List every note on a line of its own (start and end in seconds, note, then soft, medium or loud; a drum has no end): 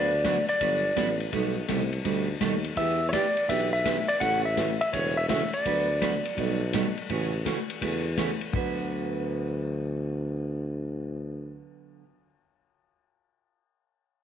0.00 0.46 D2 medium
0.00 0.11 D3 medium
0.00 0.11 F#3 medium
0.00 0.11 B3 medium
0.00 0.11 F#4 medium
0.00 0.12 B4 medium
0.00 0.48 D5 medium
0.24 0.36 D3 medium
0.24 0.37 F#3 medium
0.24 0.37 B3 medium
0.24 0.37 F#4 medium
0.24 0.37 B4 medium
0.24 kick soft
0.24 snare medium
0.24 hi-hat pedal soft
0.24 ride medium
0.48 1.17 D5 medium
0.48 ride medium
0.61 0.91 G1 medium
0.61 0.83 D3 medium
0.61 0.83 F#3 medium
0.61 0.83 B3 medium
0.61 0.84 F#4 medium
0.61 0.84 B4 medium
0.61 kick soft
0.61 ride medium
0.96 1.27 A1 medium
0.96 1.08 D3 medium
0.96 1.08 F#3 medium
0.96 1.08 B3 medium
0.96 1.09 F#4 medium
0.96 1.09 B4 medium
0.96 kick soft
0.96 snare medium
0.96 hi-hat pedal medium
0.96 ride medium
1.20 ride medium
1.32 1.62 B1 loud
1.32 1.55 B2 medium
1.32 1.55 G3 medium
1.32 1.55 A3 medium
1.32 1.55 D#4 medium
1.32 1.55 A4 medium
1.32 kick soft
1.32 ride medium
1.68 2.00 C2 medium
1.68 1.81 B2 medium
1.68 1.81 G3 medium
1.68 1.81 A3 medium
1.68 1.81 D#4 medium
1.68 1.81 A4 medium
1.68 kick soft
1.68 snare medium
1.68 hi-hat pedal medium
1.68 ride medium
1.93 ride soft
2.04 2.35 D2 medium
2.04 2.27 B2 medium
2.04 2.27 G3 medium
2.04 2.27 A3 medium
2.04 2.27 D#4 medium
2.04 2.27 A4 medium
2.04 kick soft
2.04 ride medium
2.41 2.71 D#2 medium
2.41 2.53 B2 medium
2.41 2.53 G3 medium
2.41 2.53 A3 medium
2.41 2.53 D#4 medium
2.41 2.53 A4 medium
2.41 kick soft
2.41 snare medium
2.41 hi-hat pedal medium
2.41 ride medium
2.64 ride medium
2.77 3.15 E2 medium
2.77 2.99 E3 medium
2.77 2.99 B3 medium
2.77 3.00 D4 medium
2.77 3.00 G4 medium
2.77 3.06 E5 medium
2.77 kick soft
2.77 ride medium
3.09 3.13 C#5 medium
3.09 kick soft
3.09 snare medium
3.09 hi-hat pedal medium
3.09 ride medium
3.13 3.25 E3 medium
3.13 3.25 B3 medium
3.13 3.26 D4 medium
3.13 3.26 G4 medium
3.13 3.50 D5 medium
3.37 ride medium
3.48 4.07 B1 medium
3.48 3.71 E3 medium
3.48 3.72 B3 medium
3.48 3.72 D4 medium
3.48 3.72 G4 medium
3.48 3.71 E5 loud
3.48 kick soft
3.48 ride medium
3.73 4.10 E5 loud
3.85 3.97 E3 medium
3.85 3.97 B3 medium
3.85 3.97 D4 medium
3.85 3.97 G4 medium
3.85 kick soft
3.85 snare medium
3.85 hi-hat pedal medium
3.85 ride medium
4.08 4.20 D5 medium
4.08 ride medium
4.20 4.79 A1 medium
4.20 4.43 C#3 medium
4.20 4.43 E3 medium
4.20 4.43 A3 medium
4.20 4.44 C#4 medium
4.20 4.43 F#4 medium
4.20 4.45 F#5 loud
4.20 kick soft
4.20 ride medium
4.45 4.80 E5 medium
4.56 4.69 C#3 medium
4.56 4.69 E3 medium
4.56 4.69 A3 medium
4.56 4.69 C#4 medium
4.56 4.69 F#4 medium
4.56 kick soft
4.56 snare medium
4.56 hi-hat pedal medium
4.56 ride medium
4.81 4.93 E5 loud
4.81 ride medium
4.93 5.51 E1 medium
4.93 5.15 C#3 medium
4.93 5.16 E3 medium
4.93 5.16 A3 medium
4.93 5.16 C#4 medium
4.93 5.16 F#4 medium
4.93 5.17 C#5 medium
4.93 kick soft
4.93 ride medium
5.17 5.29 E5 medium
5.29 5.41 C#3 medium
5.29 5.41 E3 medium
5.29 5.41 A3 medium
5.29 5.42 C#4 medium
5.29 5.42 F#4 loud
5.29 5.54 E5 medium
5.29 kick soft
5.29 snare medium
5.29 hi-hat pedal medium
5.29 ride medium
5.53 6.57 D5 medium
5.53 ride soft
5.65 6.23 D2 medium
5.65 5.88 D3 medium
5.65 5.88 F#3 medium
5.65 5.88 B3 medium
5.65 5.88 F#4 medium
5.65 5.88 B4 medium
5.65 kick soft
5.65 ride medium
6.01 6.13 D3 medium
6.01 6.13 F#3 medium
6.01 6.13 B3 medium
6.01 6.14 F#4 medium
6.01 6.14 B4 medium
6.01 kick soft
6.01 snare medium
6.01 hi-hat pedal medium
6.01 ride medium
6.25 ride medium
6.37 6.95 B1 loud
6.37 6.60 B2 soft
6.37 6.60 G3 soft
6.37 6.60 A3 medium
6.37 6.60 D#4 medium
6.37 6.60 A4 medium
6.37 kick soft
6.37 ride medium
6.73 6.85 B2 medium
6.73 6.85 G3 medium
6.73 6.86 A3 medium
6.73 6.86 D#4 medium
6.73 6.86 A4 medium
6.73 kick soft
6.73 snare medium
6.73 hi-hat pedal medium
6.73 ride medium
6.98 ride soft
7.09 7.48 A1 loud
7.09 7.32 C#3 medium
7.09 7.32 E3 medium
7.09 7.32 A3 medium
7.09 7.32 C#4 medium
7.09 7.33 F#4 medium
7.09 kick soft
7.09 ride medium
7.45 7.57 C#3 medium
7.45 7.57 E3 medium
7.45 7.57 A3 medium
7.45 7.58 C#4 medium
7.45 7.58 F#4 medium
7.45 kick soft
7.45 snare medium
7.45 hi-hat pedal medium
7.45 ride medium
7.70 ride medium
7.82 8.39 E2 medium
7.82 8.04 C#3 medium
7.82 8.04 E3 soft
7.82 8.04 A3 medium
7.82 8.04 C#4 medium
7.82 8.04 F#4 medium
7.82 kick soft
7.82 ride medium
8.18 8.29 C#3 medium
8.18 8.29 E3 medium
8.18 8.29 A3 medium
8.18 8.30 C#4 medium
8.18 8.30 F#4 medium
8.18 kick soft
8.18 snare medium
8.18 hi-hat pedal medium
8.18 ride medium
8.41 ride soft
8.53 11.62 D2 medium
8.53 12.03 D3 medium
8.53 12.04 F#3 medium
8.53 12.04 B3 medium
8.53 12.05 F#4 medium
8.53 12.06 B4 medium
8.53 kick loud